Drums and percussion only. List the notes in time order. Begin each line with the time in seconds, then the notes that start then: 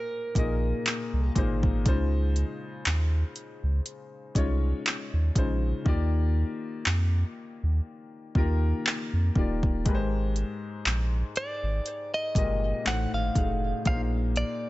0.35 kick, closed hi-hat
0.86 clap, closed hi-hat
1.36 kick, closed hi-hat
1.63 kick
1.86 kick, closed hi-hat
2.36 closed hi-hat
2.86 clap, closed hi-hat
3.36 closed hi-hat
3.86 closed hi-hat
4.35 kick, closed hi-hat
4.86 clap, closed hi-hat
5.35 kick, closed hi-hat
5.86 kick
6.86 clap
8.35 kick
8.87 clap
9.35 kick
9.63 kick
9.86 kick, closed hi-hat
10.36 closed hi-hat
10.86 clap, closed hi-hat
11.36 closed hi-hat
11.86 closed hi-hat
12.35 kick, closed hi-hat
12.86 clap, closed hi-hat
13.35 kick, closed hi-hat
13.85 kick, closed hi-hat
14.36 closed hi-hat